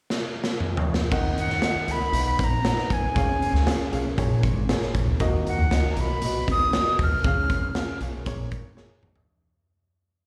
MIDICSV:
0, 0, Header, 1, 6, 480
1, 0, Start_track
1, 0, Key_signature, -6, "minor"
1, 0, Tempo, 510638
1, 1051, Time_signature, 4, 2, 24, 8
1, 9649, End_track
2, 0, Start_track
2, 0, Title_t, "Flute"
2, 0, Program_c, 0, 73
2, 1309, Note_on_c, 0, 78, 88
2, 1799, Note_on_c, 0, 83, 97
2, 1813, Note_off_c, 0, 78, 0
2, 2295, Note_on_c, 0, 82, 101
2, 2309, Note_off_c, 0, 83, 0
2, 2754, Note_on_c, 0, 80, 79
2, 2768, Note_off_c, 0, 82, 0
2, 3702, Note_off_c, 0, 80, 0
2, 5151, Note_on_c, 0, 78, 78
2, 5557, Note_on_c, 0, 82, 64
2, 5571, Note_off_c, 0, 78, 0
2, 5641, Note_on_c, 0, 83, 85
2, 5655, Note_off_c, 0, 82, 0
2, 6107, Note_off_c, 0, 83, 0
2, 6123, Note_on_c, 0, 87, 108
2, 6556, Note_off_c, 0, 87, 0
2, 6606, Note_on_c, 0, 89, 90
2, 7513, Note_off_c, 0, 89, 0
2, 9649, End_track
3, 0, Start_track
3, 0, Title_t, "Grand piano"
3, 0, Program_c, 1, 0
3, 1051, Note_on_c, 1, 51, 75
3, 1051, Note_on_c, 1, 70, 93
3, 1052, Note_on_c, 1, 63, 107
3, 1052, Note_on_c, 1, 78, 113
3, 1429, Note_off_c, 1, 70, 0
3, 1430, Note_off_c, 1, 63, 0
3, 1430, Note_off_c, 1, 78, 0
3, 1527, Note_on_c, 1, 70, 62
3, 1527, Note_on_c, 1, 78, 77
3, 1529, Note_on_c, 1, 63, 68
3, 1718, Note_off_c, 1, 70, 0
3, 1718, Note_off_c, 1, 78, 0
3, 1719, Note_off_c, 1, 63, 0
3, 1732, Note_off_c, 1, 51, 0
3, 1764, Note_on_c, 1, 63, 59
3, 1765, Note_on_c, 1, 70, 54
3, 1768, Note_on_c, 1, 78, 67
3, 1956, Note_off_c, 1, 63, 0
3, 1957, Note_off_c, 1, 70, 0
3, 1958, Note_off_c, 1, 78, 0
3, 1998, Note_on_c, 1, 71, 60
3, 2000, Note_on_c, 1, 63, 72
3, 2002, Note_on_c, 1, 77, 58
3, 2003, Note_on_c, 1, 59, 64
3, 2058, Note_on_c, 1, 78, 76
3, 2063, Note_off_c, 1, 77, 0
3, 2382, Note_off_c, 1, 71, 0
3, 2383, Note_off_c, 1, 63, 0
3, 2413, Note_off_c, 1, 78, 0
3, 2489, Note_on_c, 1, 78, 70
3, 2493, Note_on_c, 1, 63, 64
3, 2493, Note_on_c, 1, 71, 56
3, 2688, Note_off_c, 1, 59, 0
3, 2868, Note_off_c, 1, 78, 0
3, 2870, Note_off_c, 1, 63, 0
3, 2870, Note_off_c, 1, 71, 0
3, 2970, Note_on_c, 1, 68, 87
3, 2977, Note_on_c, 1, 49, 64
3, 2977, Note_on_c, 1, 61, 97
3, 2977, Note_on_c, 1, 77, 110
3, 3349, Note_off_c, 1, 68, 0
3, 3352, Note_off_c, 1, 61, 0
3, 3352, Note_off_c, 1, 77, 0
3, 3446, Note_on_c, 1, 61, 78
3, 3446, Note_on_c, 1, 68, 74
3, 3446, Note_on_c, 1, 77, 90
3, 3637, Note_off_c, 1, 61, 0
3, 3637, Note_off_c, 1, 68, 0
3, 3637, Note_off_c, 1, 77, 0
3, 3656, Note_off_c, 1, 49, 0
3, 3684, Note_on_c, 1, 61, 70
3, 3687, Note_on_c, 1, 68, 68
3, 3689, Note_on_c, 1, 77, 89
3, 3876, Note_off_c, 1, 61, 0
3, 3878, Note_off_c, 1, 68, 0
3, 3879, Note_off_c, 1, 77, 0
3, 3932, Note_on_c, 1, 68, 78
3, 3933, Note_on_c, 1, 46, 74
3, 3933, Note_on_c, 1, 58, 80
3, 3933, Note_on_c, 1, 73, 89
3, 4310, Note_off_c, 1, 58, 0
3, 4310, Note_off_c, 1, 68, 0
3, 4310, Note_off_c, 1, 73, 0
3, 4413, Note_on_c, 1, 58, 82
3, 4413, Note_on_c, 1, 68, 77
3, 4416, Note_on_c, 1, 73, 79
3, 4614, Note_off_c, 1, 46, 0
3, 4791, Note_off_c, 1, 58, 0
3, 4791, Note_off_c, 1, 68, 0
3, 4792, Note_off_c, 1, 73, 0
3, 4889, Note_on_c, 1, 58, 114
3, 4891, Note_on_c, 1, 66, 102
3, 4894, Note_on_c, 1, 75, 127
3, 4897, Note_on_c, 1, 51, 74
3, 5270, Note_off_c, 1, 58, 0
3, 5270, Note_off_c, 1, 66, 0
3, 5272, Note_off_c, 1, 75, 0
3, 5381, Note_on_c, 1, 66, 60
3, 5382, Note_on_c, 1, 58, 69
3, 5382, Note_on_c, 1, 75, 81
3, 5566, Note_off_c, 1, 58, 0
3, 5566, Note_off_c, 1, 66, 0
3, 5566, Note_off_c, 1, 75, 0
3, 5577, Note_off_c, 1, 51, 0
3, 5627, Note_on_c, 1, 75, 67
3, 5629, Note_on_c, 1, 58, 64
3, 5631, Note_on_c, 1, 66, 54
3, 5809, Note_off_c, 1, 75, 0
3, 5810, Note_off_c, 1, 58, 0
3, 5811, Note_off_c, 1, 66, 0
3, 5862, Note_on_c, 1, 75, 74
3, 5866, Note_on_c, 1, 47, 58
3, 5867, Note_on_c, 1, 59, 70
3, 5867, Note_on_c, 1, 66, 64
3, 6237, Note_off_c, 1, 75, 0
3, 6239, Note_off_c, 1, 59, 0
3, 6239, Note_off_c, 1, 66, 0
3, 6344, Note_on_c, 1, 66, 61
3, 6344, Note_on_c, 1, 74, 61
3, 6347, Note_on_c, 1, 59, 62
3, 6396, Note_off_c, 1, 74, 0
3, 6401, Note_on_c, 1, 75, 73
3, 6543, Note_off_c, 1, 47, 0
3, 6718, Note_off_c, 1, 66, 0
3, 6719, Note_off_c, 1, 59, 0
3, 6746, Note_off_c, 1, 75, 0
3, 6818, Note_on_c, 1, 61, 94
3, 6821, Note_on_c, 1, 49, 65
3, 6821, Note_on_c, 1, 77, 106
3, 6822, Note_on_c, 1, 68, 89
3, 7195, Note_off_c, 1, 61, 0
3, 7197, Note_off_c, 1, 68, 0
3, 7197, Note_off_c, 1, 77, 0
3, 7295, Note_on_c, 1, 61, 79
3, 7295, Note_on_c, 1, 68, 75
3, 7296, Note_on_c, 1, 77, 87
3, 7484, Note_off_c, 1, 61, 0
3, 7485, Note_off_c, 1, 68, 0
3, 7485, Note_off_c, 1, 77, 0
3, 7500, Note_off_c, 1, 49, 0
3, 7534, Note_on_c, 1, 77, 81
3, 7537, Note_on_c, 1, 61, 70
3, 7538, Note_on_c, 1, 68, 60
3, 7724, Note_off_c, 1, 77, 0
3, 7726, Note_off_c, 1, 61, 0
3, 7726, Note_off_c, 1, 68, 0
3, 7772, Note_on_c, 1, 58, 86
3, 7774, Note_on_c, 1, 68, 69
3, 7775, Note_on_c, 1, 46, 72
3, 7775, Note_on_c, 1, 73, 99
3, 8153, Note_off_c, 1, 58, 0
3, 8154, Note_off_c, 1, 68, 0
3, 8154, Note_off_c, 1, 73, 0
3, 8239, Note_on_c, 1, 58, 79
3, 8241, Note_on_c, 1, 73, 81
3, 8243, Note_on_c, 1, 68, 70
3, 8458, Note_off_c, 1, 46, 0
3, 8626, Note_off_c, 1, 58, 0
3, 8627, Note_off_c, 1, 73, 0
3, 8628, Note_off_c, 1, 68, 0
3, 9649, End_track
4, 0, Start_track
4, 0, Title_t, "Upright bass"
4, 0, Program_c, 2, 32
4, 1046, Note_on_c, 2, 39, 92
4, 1233, Note_off_c, 2, 39, 0
4, 1400, Note_on_c, 2, 39, 78
4, 1496, Note_off_c, 2, 39, 0
4, 1760, Note_on_c, 2, 37, 82
4, 1949, Note_off_c, 2, 37, 0
4, 1996, Note_on_c, 2, 35, 88
4, 2187, Note_off_c, 2, 35, 0
4, 2245, Note_on_c, 2, 34, 79
4, 2525, Note_off_c, 2, 34, 0
4, 2727, Note_on_c, 2, 35, 84
4, 2820, Note_off_c, 2, 35, 0
4, 2843, Note_on_c, 2, 35, 85
4, 2938, Note_off_c, 2, 35, 0
4, 2966, Note_on_c, 2, 37, 86
4, 3153, Note_off_c, 2, 37, 0
4, 3314, Note_on_c, 2, 37, 97
4, 3412, Note_off_c, 2, 37, 0
4, 3676, Note_on_c, 2, 35, 84
4, 3866, Note_off_c, 2, 35, 0
4, 3923, Note_on_c, 2, 34, 94
4, 4111, Note_off_c, 2, 34, 0
4, 4166, Note_on_c, 2, 32, 93
4, 4446, Note_off_c, 2, 32, 0
4, 4647, Note_on_c, 2, 34, 77
4, 4741, Note_off_c, 2, 34, 0
4, 4762, Note_on_c, 2, 37, 86
4, 4858, Note_off_c, 2, 37, 0
4, 4887, Note_on_c, 2, 39, 90
4, 5074, Note_off_c, 2, 39, 0
4, 5241, Note_on_c, 2, 39, 92
4, 5338, Note_off_c, 2, 39, 0
4, 5361, Note_on_c, 2, 37, 91
4, 5551, Note_off_c, 2, 37, 0
4, 5605, Note_on_c, 2, 35, 89
4, 5793, Note_off_c, 2, 35, 0
4, 5845, Note_on_c, 2, 35, 97
4, 6034, Note_off_c, 2, 35, 0
4, 6084, Note_on_c, 2, 37, 87
4, 6366, Note_off_c, 2, 37, 0
4, 6568, Note_on_c, 2, 39, 79
4, 6663, Note_off_c, 2, 39, 0
4, 6683, Note_on_c, 2, 35, 85
4, 6780, Note_off_c, 2, 35, 0
4, 6807, Note_on_c, 2, 37, 102
4, 6995, Note_off_c, 2, 37, 0
4, 7165, Note_on_c, 2, 37, 88
4, 7261, Note_off_c, 2, 37, 0
4, 7521, Note_on_c, 2, 35, 87
4, 7712, Note_off_c, 2, 35, 0
4, 7764, Note_on_c, 2, 34, 94
4, 8003, Note_off_c, 2, 34, 0
4, 8003, Note_on_c, 2, 32, 81
4, 8286, Note_off_c, 2, 32, 0
4, 8488, Note_on_c, 2, 34, 81
4, 8583, Note_off_c, 2, 34, 0
4, 8604, Note_on_c, 2, 32, 88
4, 8701, Note_off_c, 2, 32, 0
4, 9649, End_track
5, 0, Start_track
5, 0, Title_t, "Muted upright bass strokes"
5, 1643, Note_on_c, 9, 29, 41
5, 1737, Note_off_c, 9, 29, 0
5, 3558, Note_on_c, 9, 29, 42
5, 3652, Note_off_c, 9, 29, 0
5, 7406, Note_on_c, 9, 29, 47
5, 7500, Note_off_c, 9, 29, 0
5, 9649, End_track
6, 0, Start_track
6, 0, Title_t, "Drums"
6, 96, Note_on_c, 9, 38, 55
6, 190, Note_off_c, 9, 38, 0
6, 410, Note_on_c, 9, 38, 71
6, 504, Note_off_c, 9, 38, 0
6, 567, Note_on_c, 9, 45, 62
6, 661, Note_off_c, 9, 45, 0
6, 727, Note_on_c, 9, 43, 87
6, 821, Note_off_c, 9, 43, 0
6, 886, Note_on_c, 9, 38, 75
6, 980, Note_off_c, 9, 38, 0
6, 1049, Note_on_c, 9, 36, 89
6, 1050, Note_on_c, 9, 49, 69
6, 1143, Note_off_c, 9, 36, 0
6, 1144, Note_off_c, 9, 49, 0
6, 1295, Note_on_c, 9, 42, 54
6, 1389, Note_off_c, 9, 42, 0
6, 1410, Note_on_c, 9, 38, 34
6, 1504, Note_off_c, 9, 38, 0
6, 1523, Note_on_c, 9, 38, 92
6, 1532, Note_on_c, 9, 42, 82
6, 1617, Note_off_c, 9, 38, 0
6, 1626, Note_off_c, 9, 42, 0
6, 1768, Note_on_c, 9, 42, 73
6, 1862, Note_off_c, 9, 42, 0
6, 2006, Note_on_c, 9, 42, 87
6, 2100, Note_off_c, 9, 42, 0
6, 2248, Note_on_c, 9, 36, 80
6, 2257, Note_on_c, 9, 42, 79
6, 2342, Note_off_c, 9, 36, 0
6, 2351, Note_off_c, 9, 42, 0
6, 2489, Note_on_c, 9, 38, 93
6, 2489, Note_on_c, 9, 42, 75
6, 2583, Note_off_c, 9, 38, 0
6, 2583, Note_off_c, 9, 42, 0
6, 2612, Note_on_c, 9, 38, 28
6, 2706, Note_off_c, 9, 38, 0
6, 2730, Note_on_c, 9, 36, 75
6, 2736, Note_on_c, 9, 42, 62
6, 2824, Note_off_c, 9, 36, 0
6, 2830, Note_off_c, 9, 42, 0
6, 2969, Note_on_c, 9, 42, 74
6, 2970, Note_on_c, 9, 36, 91
6, 3063, Note_off_c, 9, 42, 0
6, 3064, Note_off_c, 9, 36, 0
6, 3218, Note_on_c, 9, 42, 53
6, 3312, Note_off_c, 9, 42, 0
6, 3339, Note_on_c, 9, 38, 34
6, 3433, Note_off_c, 9, 38, 0
6, 3449, Note_on_c, 9, 38, 102
6, 3458, Note_on_c, 9, 42, 89
6, 3543, Note_off_c, 9, 38, 0
6, 3552, Note_off_c, 9, 42, 0
6, 3692, Note_on_c, 9, 42, 70
6, 3786, Note_off_c, 9, 42, 0
6, 3929, Note_on_c, 9, 36, 86
6, 3929, Note_on_c, 9, 42, 88
6, 4023, Note_off_c, 9, 36, 0
6, 4023, Note_off_c, 9, 42, 0
6, 4168, Note_on_c, 9, 36, 82
6, 4169, Note_on_c, 9, 42, 77
6, 4262, Note_off_c, 9, 36, 0
6, 4263, Note_off_c, 9, 42, 0
6, 4411, Note_on_c, 9, 38, 99
6, 4412, Note_on_c, 9, 42, 75
6, 4505, Note_off_c, 9, 38, 0
6, 4506, Note_off_c, 9, 42, 0
6, 4529, Note_on_c, 9, 38, 29
6, 4623, Note_off_c, 9, 38, 0
6, 4650, Note_on_c, 9, 36, 79
6, 4652, Note_on_c, 9, 42, 60
6, 4744, Note_off_c, 9, 36, 0
6, 4746, Note_off_c, 9, 42, 0
6, 4885, Note_on_c, 9, 42, 72
6, 4890, Note_on_c, 9, 36, 104
6, 4979, Note_off_c, 9, 42, 0
6, 4984, Note_off_c, 9, 36, 0
6, 5138, Note_on_c, 9, 42, 55
6, 5232, Note_off_c, 9, 42, 0
6, 5370, Note_on_c, 9, 38, 89
6, 5378, Note_on_c, 9, 42, 88
6, 5464, Note_off_c, 9, 38, 0
6, 5472, Note_off_c, 9, 42, 0
6, 5607, Note_on_c, 9, 42, 72
6, 5701, Note_off_c, 9, 42, 0
6, 5844, Note_on_c, 9, 42, 88
6, 5938, Note_off_c, 9, 42, 0
6, 6090, Note_on_c, 9, 36, 86
6, 6095, Note_on_c, 9, 42, 72
6, 6184, Note_off_c, 9, 36, 0
6, 6189, Note_off_c, 9, 42, 0
6, 6329, Note_on_c, 9, 38, 103
6, 6329, Note_on_c, 9, 42, 73
6, 6423, Note_off_c, 9, 38, 0
6, 6423, Note_off_c, 9, 42, 0
6, 6571, Note_on_c, 9, 36, 82
6, 6572, Note_on_c, 9, 46, 41
6, 6665, Note_off_c, 9, 36, 0
6, 6666, Note_off_c, 9, 46, 0
6, 6806, Note_on_c, 9, 42, 76
6, 6810, Note_on_c, 9, 36, 96
6, 6900, Note_off_c, 9, 42, 0
6, 6904, Note_off_c, 9, 36, 0
6, 7047, Note_on_c, 9, 36, 90
6, 7054, Note_on_c, 9, 42, 54
6, 7141, Note_off_c, 9, 36, 0
6, 7148, Note_off_c, 9, 42, 0
6, 7285, Note_on_c, 9, 38, 102
6, 7294, Note_on_c, 9, 42, 83
6, 7379, Note_off_c, 9, 38, 0
6, 7388, Note_off_c, 9, 42, 0
6, 7524, Note_on_c, 9, 42, 74
6, 7618, Note_off_c, 9, 42, 0
6, 7764, Note_on_c, 9, 42, 94
6, 7767, Note_on_c, 9, 36, 86
6, 7858, Note_off_c, 9, 42, 0
6, 7861, Note_off_c, 9, 36, 0
6, 8003, Note_on_c, 9, 42, 78
6, 8007, Note_on_c, 9, 36, 81
6, 8097, Note_off_c, 9, 42, 0
6, 8101, Note_off_c, 9, 36, 0
6, 8244, Note_on_c, 9, 38, 47
6, 8338, Note_off_c, 9, 38, 0
6, 8486, Note_on_c, 9, 45, 78
6, 8580, Note_off_c, 9, 45, 0
6, 8606, Note_on_c, 9, 43, 94
6, 8700, Note_off_c, 9, 43, 0
6, 9649, End_track
0, 0, End_of_file